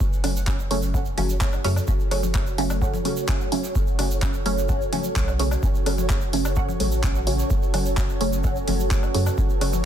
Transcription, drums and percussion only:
0.00 kick loud
0.00 shaker medium
0.13 shaker soft
0.24 open hi-hat medium
0.24 low woodblock medium
0.36 shaker medium
0.47 kick loud
0.47 clap medium
0.47 shaker medium
0.59 shaker soft
0.71 open hi-hat medium
0.82 shaker medium
0.94 kick loud
0.94 shaker medium
1.05 shaker soft
1.18 open hi-hat medium
1.18 low conga medium
1.29 shaker medium
1.41 kick loud
1.41 clap medium
1.41 shaker medium
1.52 low woodblock medium
1.52 shaker soft
1.64 open hi-hat medium
1.76 low woodblock medium
1.76 shaker medium
1.87 kick loud
1.87 shaker medium
2.00 shaker soft
2.11 open hi-hat loud
2.11 low woodblock medium
2.23 low conga medium
2.23 shaker medium
2.34 kick loud
2.34 clap medium
2.34 shaker medium
2.47 shaker soft
2.58 open hi-hat medium
2.70 low woodblock medium
2.70 shaker medium
2.82 kick loud
2.82 shaker medium
2.94 low conga loud
2.94 shaker soft
3.05 open hi-hat medium
3.17 shaker medium
3.28 kick loud
3.28 clap medium
3.28 shaker medium
3.40 shaker soft
3.52 open hi-hat medium
3.64 shaker medium
3.75 kick loud
3.75 shaker medium
3.87 shaker soft
3.99 open hi-hat loud
3.99 low woodblock medium
4.11 shaker medium
4.22 kick loud
4.22 clap medium
4.22 shaker medium
4.34 shaker soft
4.46 open hi-hat medium
4.58 shaker medium
4.69 kick loud
4.69 shaker medium
4.81 shaker soft
4.93 open hi-hat medium
4.93 low conga medium
5.04 shaker medium
5.16 kick loud
5.16 clap medium
5.16 shaker medium
5.28 low woodblock medium
5.28 shaker soft
5.39 open hi-hat medium
5.51 low woodblock medium
5.51 shaker medium
5.63 kick loud
5.63 shaker medium
5.75 shaker soft
5.86 open hi-hat medium
5.86 low woodblock medium
5.98 low conga medium
5.98 shaker medium
6.09 kick loud
6.09 clap medium
6.09 shaker medium
6.21 shaker soft
6.33 open hi-hat medium
6.45 low woodblock medium
6.45 shaker medium
6.56 kick loud
6.56 shaker medium
6.69 low conga medium
6.69 shaker soft
6.80 open hi-hat medium
6.91 shaker medium
7.03 kick loud
7.03 clap medium
7.03 shaker medium
7.15 shaker soft
7.27 open hi-hat medium
7.39 shaker medium
7.50 kick loud
7.50 shaker medium
7.63 shaker soft
7.74 open hi-hat medium
7.74 low woodblock medium
7.85 shaker medium
7.97 kick loud
7.97 clap medium
7.97 shaker medium
8.09 shaker soft
8.21 open hi-hat medium
8.33 shaker medium
8.44 kick loud
8.44 shaker medium
8.56 shaker soft
8.68 open hi-hat medium
8.68 low conga medium
8.80 shaker medium
8.91 kick loud
8.91 clap medium
8.91 shaker medium
9.03 low woodblock medium
9.03 shaker soft
9.14 open hi-hat medium
9.26 low woodblock medium
9.26 shaker medium
9.38 kick loud
9.38 shaker medium
9.49 shaker soft
9.61 open hi-hat medium
9.61 low woodblock medium
9.73 low conga medium
9.73 shaker medium

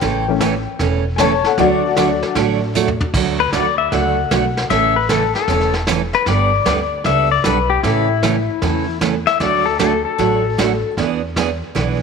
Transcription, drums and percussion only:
0.02 brush sweep soft
0.02 kick soft
0.02 snare medium
0.41 kick soft
0.41 snare medium
0.41 hi-hat pedal medium
0.79 brush sweep medium
0.79 kick soft
0.79 snare soft
1.18 kick soft
1.18 snare medium
1.18 hi-hat pedal medium
1.44 snare soft
1.58 brush sweep medium
1.58 kick soft
1.58 snare soft
1.97 kick soft
1.97 snare medium
1.97 hi-hat pedal medium
2.23 snare soft
2.35 brush sweep soft
2.35 kick soft
2.35 snare medium
2.75 floor tom medium
2.75 hi-hat pedal medium
2.88 floor tom medium
3.00 floor tom medium
3.14 brush sweep soft
3.14 kick medium
3.14 snare soft
3.14 crash medium
3.53 kick soft
3.53 snare medium
3.53 hi-hat pedal medium
3.92 brush sweep soft
3.92 kick soft
3.92 snare soft
4.31 kick soft
4.31 snare medium
4.31 hi-hat pedal medium
4.57 snare soft
4.70 brush sweep medium
4.70 kick soft
4.70 snare soft
5.09 kick soft
5.09 snare medium
5.09 hi-hat pedal medium
5.35 snare soft
5.48 brush sweep medium
5.48 kick soft
5.48 snare soft
5.61 snare soft
5.74 snare soft
5.87 kick soft
5.87 snare medium
5.87 hi-hat pedal medium
6.13 snare soft
6.26 brush sweep medium
6.26 kick soft
6.26 snare soft
6.66 kick soft
6.66 snare medium
6.66 hi-hat pedal medium
7.04 brush sweep medium
7.04 kick soft
7.04 snare soft
7.44 kick soft
7.44 snare medium
7.44 hi-hat pedal medium
7.83 brush sweep soft
7.83 kick soft
7.83 snare soft
8.22 kick soft
8.22 snare medium
8.22 hi-hat pedal medium
8.62 brush sweep soft
8.62 kick soft
8.62 snare soft
9.01 kick soft
9.01 snare medium
9.01 hi-hat pedal medium
9.28 snare soft
9.40 brush sweep medium
9.40 kick soft
9.40 snare soft
9.79 kick soft
9.79 snare medium
9.79 hi-hat pedal medium
10.19 brush sweep soft
10.19 kick soft
10.19 snare soft
10.58 kick soft
10.58 snare medium
10.58 hi-hat pedal medium
10.97 brush sweep medium
10.97 kick soft
10.97 snare medium
11.36 kick soft
11.36 snare medium
11.36 hi-hat pedal medium
11.75 brush sweep soft
11.75 kick soft
11.75 snare soft

